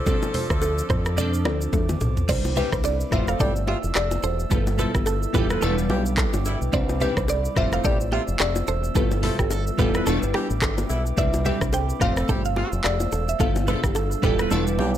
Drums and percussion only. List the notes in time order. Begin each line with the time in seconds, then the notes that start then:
0.06 kick, low conga, shaker
0.22 low bongo, shaker
0.34 open hi-hat, low conga
0.50 kick, cross-stick, shaker
0.62 high bongo, shaker
0.78 shaker
0.90 kick, cross-stick, mid tom, low bongo, shaker
1.06 cross-stick, shaker
1.18 low conga, shaker
1.34 shaker
1.45 cross-stick, low bongo
1.61 shaker
1.73 kick, high tom, high bongo, shaker
1.89 mid tom, low bongo, shaker
2.01 mid tom, high bongo, shaker
2.17 floor tom, shaker
2.29 kick, crash, low conga, shaker
2.45 low bongo, shaker
2.56 low conga, shaker
2.72 kick, cross-stick, shaker
2.84 high bongo, shaker
3.00 shaker
3.12 kick, cross-stick, mid tom, low bongo, shaker
3.28 cross-stick, shaker
3.40 kick, low conga, shaker
3.56 shaker
3.67 low bongo
3.84 shaker
3.95 cross-stick, clap, high bongo, shaker
4.11 low bongo, shaker
4.23 high bongo, shaker
4.40 shaker
4.51 kick, low conga, shaker
4.67 low bongo, shaker
4.79 low conga, shaker
4.95 kick, cross-stick, shaker
5.06 high bongo, shaker
5.23 shaker
5.34 kick, mid tom, low bongo, shaker
5.50 cross-stick, shaker
5.62 low conga, shaker
5.78 shaker
5.90 low bongo
6.06 shaker
6.17 kick, cross-stick, clap, high bongo, shaker
6.33 low bongo, shaker
6.45 high bongo, shaker
6.62 shaker
6.73 kick, low conga, shaker
6.89 low bongo, shaker
7.01 low conga, shaker
7.17 kick, cross-stick, shaker
7.28 high bongo, shaker
7.45 shaker
7.56 kick, cross-stick, mid tom, low bongo, shaker
7.72 cross-stick, shaker
7.84 kick, low conga, shaker
8.01 shaker
8.12 low bongo
8.28 shaker
8.40 cross-stick, clap, high bongo, shaker
8.56 low bongo, shaker
8.67 high bongo, shaker
8.84 shaker
8.95 kick, low conga, shaker
9.11 low bongo, shaker
9.23 open hi-hat, low conga
9.39 kick, cross-stick, shaker
9.50 high bongo, shaker
9.67 shaker
9.79 kick, mid tom, low bongo, shaker
9.94 cross-stick, shaker
10.06 low conga, shaker
10.23 shaker
10.34 cross-stick, low bongo
10.50 shaker
10.62 kick, cross-stick, clap, high bongo, shaker
10.78 low bongo, shaker
10.90 high bongo, shaker
11.06 shaker
11.18 kick, low conga, shaker
11.34 low bongo, shaker
11.45 low conga, shaker
11.61 kick, cross-stick, shaker
11.73 high bongo, shaker
11.89 shaker
12.01 kick, cross-stick, mid tom, low bongo, shaker
12.17 cross-stick, shaker
12.29 kick, low conga, shaker
12.45 shaker
12.56 low bongo
12.72 shaker
12.84 cross-stick, clap, high bongo, shaker
13.00 low bongo, shaker
13.12 high bongo, shaker
13.29 shaker
13.40 kick, low conga, shaker
13.56 low bongo, shaker
13.67 low conga, shaker
13.84 kick, cross-stick, shaker
13.95 high bongo, shaker
14.12 shaker
14.23 kick, mid tom, low bongo, shaker
14.39 cross-stick, shaker
14.51 low conga, shaker
14.67 shaker
14.79 low bongo
14.95 shaker